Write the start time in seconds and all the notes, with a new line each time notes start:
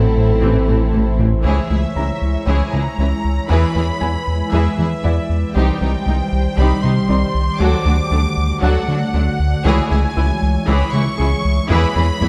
Already playing: A1 E3 F#3 A3 C4 E4 A4 C5 F#5 A5
0.17 A2
0.42 A1 A2 E3 C4
0.68 A1 A2 E3 A3 C4
0.93 A1 A2 E3 C4
1.19 A1 A2 E3 C4
1.44 C#2 E3 G#3 E4 G#4 C#5 E5
1.70 C#2 E3 E4 G#4
1.96 C#2 E3 C#4 E4 A#5
2.22 C#2
2.47 C#2 E3 E4 G#4 C#5 G#5
2.73 C#2 C#3 E3 E4 G#4 A#5
2.98 C#2 E3 C#4 E4
3.24 C#2
3.49 E2 E3 E4 G#4 B4 B5
3.75 E2 E3 E4 G#4
4.01 E2 E3 B3 E4 G#5
4.27 E2
4.51 E2 E3 E4 G#4 B4 E5
4.77 E2 E3 E4 G#4
5.04 E2 E3 B3 E4 D5
5.29 E2
5.55 C2 D#3 G3 D#4 G4 C5 G5
5.81 C2 G3 D#4 G4
6.06 C2 G3 C4 D#4
6.32 C2
6.57 C2 G3 D#4 G4 C5 B5
6.83 C2 C3 G3 D#4 G4 C6
7.09 C2 G3 C4 D#4 D5
7.34 C2
7.59 D2 D3 F#3 A3 D4 F#4 A4 D5 D6
7.85 D2 F#3 D4 F#4
8.11 D2 F#3 A3 D4
8.37 D2
8.62 D2 F#3 D4 F#4 A4 F#5
8.88 D2 D3 F#3 D4 F#4
9.14 D2 F#3 A3 D4
9.39 D2
9.65 C#2 E3 G#3 E4 G#4 C#5 G#5
9.90 C#2 E3 E4 G#4
10.16 C#2 E3 C#4 E4
10.42 C#2
10.67 C#2 E3 E4 G#4 C#5 B5
10.93 C#2 C#3 E3 E4 G#4 C#6
11.18 C#2 E3 C#4 E4 G#4
11.45 C#2
11.69 E2 E3 E4 G#4 B4 B5
11.95 E2 E3 E4 G#4
12.21 E2 E3 B3 E4